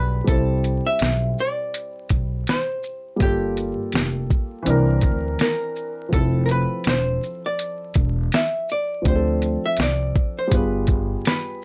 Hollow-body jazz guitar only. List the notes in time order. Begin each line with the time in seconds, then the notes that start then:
Already playing: B4 D5
0.28 A4
0.86 E5
1.40 D5
2.49 C5
3.22 G4
5.41 A#4
6.13 A4
6.46 A#4
6.51 B4
6.89 C5
7.46 D5
8.34 E5
8.72 D5
9.08 C5
9.66 E5
9.82 D5
10.39 C5
10.55 B4
11.27 B4